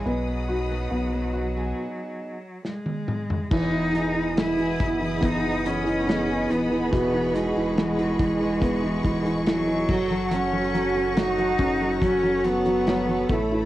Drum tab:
CC |----------------|x---------------|--------------x-|----------------|
HH |----------------|--x-xxx-x-xxx-x-|x-x-xxx-x-xxx---|x-x-xxx-x-xxx-x-|
SD |------------o---|----o-------o---|----o-------o---|----o-------o---|
T1 |-------------o--|----------------|----------------|----------------|
T2 |--------------o-|----------------|----------------|----------------|
FT |---------------o|----------------|----------------|----------------|
BD |----------------|o-----o-o-------|o-----o-o-o---o-|------o-o-----o-|